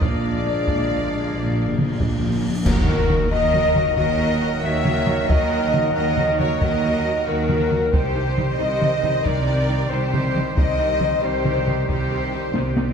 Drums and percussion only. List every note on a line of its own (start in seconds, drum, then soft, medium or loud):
0.02 taiko loud
0.68 taiko medium
1.78 taiko mid medium
2.00 taiko medium
2.66 concert bass drum loud
2.66 taiko medium
2.66 crash medium
3.10 taiko mid medium
3.32 taiko rim soft
3.54 taiko mid medium
3.76 taiko mid medium
3.97 taiko medium
4.85 taiko mid medium
5.07 taiko mid medium
5.29 taiko loud
5.74 taiko mid medium
6.17 taiko mid medium
6.39 taiko mid medium
6.61 taiko loud
7.49 taiko mid medium
7.72 taiko mid medium
7.94 taiko medium
8.38 taiko mid medium
8.82 taiko mid medium
9.03 taiko mid medium
9.26 taiko medium
10.14 taiko mid medium
10.36 taiko mid medium
10.57 taiko medium
11.01 taiko mid medium
11.45 taiko mid medium
11.67 taiko mid soft
11.89 taiko medium
12.55 taiko high loud
12.77 taiko high loud